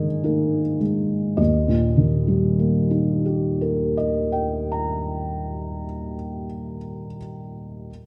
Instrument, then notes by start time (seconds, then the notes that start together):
felt piano
Already playing: D#3 G#3 A#3 D#4 D#5
0.24 A#3 D#4
0.80 G#3
1.37 D#2 D#5
1.68 A#2
1.97 D#3
2.28 G3
2.59 A#3
2.91 D#4
3.26 G4
3.61 A#4
3.97 D#5
4.32 G5
4.72 A#5